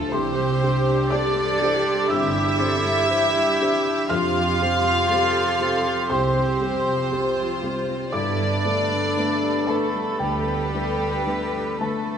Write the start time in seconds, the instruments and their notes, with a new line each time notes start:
Already playing: felt piano A2 F3 A3 F4 A4 A5, harp F3 A3 D4 A4 D5 A5, cello section F4
0.11 double bass section C2, felt piano C2 C6, harp C3, viola section E3 G4, cor anglais C4, french horn section D4 G4, clarinet G4, cello section G4, violin section C5, flute D6
0.36 viola section G3, harp G3
0.61 viola section C4, harp D4, felt piano D4 G4 C5
0.86 viola section D4, harp G4
1.11 viola section C4, cor anglais D4, felt piano D4 G4 C5 D6, cello section A4, harp C5, violin section D5
1.36 viola section G3, harp D5
1.60 viola section E3, felt piano D4 G4 C5, harp G5
1.84 viola section G3, harp C6
2.09 double bass section G1, felt piano G2 E6, viola section C4, cor anglais E4, cello section G4, violin section E5, harp G5
2.34 viola section D4, harp D5
2.58 viola section C4, felt piano D4 G4 C5, cello section A4, harp C5
2.84 viola section G3, harp G4
3.09 viola section E3, harp G3, felt piano D4 G4 C5, cello section G4
3.34 viola section G3, harp D4
3.59 harp G3, viola section C4, felt piano D4 G4 C5
3.86 viola section D4, harp D4
4.09 double bass section F2, harp F2, felt piano F2 F6, viola section C3 G4, french horn section C4 G4, cor anglais F4, cello section F4, clarinet G4, violin section F5, flute C6
4.35 harp C3, viola section F3
4.60 viola section G3, harp C4, felt piano C4 G4 C5
4.84 viola section C4, harp G4
5.09 viola section G3, felt piano C4 G4 C5, cello section A4, harp C5
5.34 viola section F3
5.59 viola section C3, felt piano C4 G4 C5
5.84 viola section F3, harp C6
6.09 double bass section C2, felt piano C2 C6, viola section G3, cor anglais C4, cello section G4, violin section C5, harp G5
6.35 viola section C4, harp C5
6.60 viola section G3, felt piano C4 G4 C5, harp G4
6.85 viola section F3, harp C4
7.11 harp C3, viola section C3, felt piano C4 G4 C5, cello section F4
7.37 viola section F3, harp C4
7.62 harp C3, viola section G3, felt piano C4 G4 C5
7.87 viola section C4, harp C4
8.12 double bass section G2, harp G2, felt piano G2 D6, viola section D3 A4, french horn section B3 A4, cor anglais D4, cello section E4, clarinet A4, violin section D5, flute B5
8.38 harp D3, viola section G3
8.65 felt piano A3 D4 B4, viola section A3, harp A3, cello section D4
8.90 viola section B3, harp D4
9.16 viola section A3, felt piano A3 D4 B4, harp B4
9.42 viola section G3, harp A4
9.67 viola section D3, cor anglais A3, felt piano A3 D4 B4 A5, violin section A4, harp D5
9.93 viola section G3, harp B5
10.19 felt piano D2 G5, double bass section D2, cor anglais G3, viola section A3, violin section G4, cello section B4, harp D5
10.46 viola section B3, harp A4
10.73 viola section A3, felt piano A3 D4 B4, harp B4
10.99 viola section G3, harp D4
11.26 viola section D3, harp D3, felt piano A3 D4 B4
11.53 viola section G3, harp A3
11.79 harp D3, viola section A3, felt piano A3 D4 B4 A5, cor anglais A3, violin section A4
12.08 harp A3, viola section B3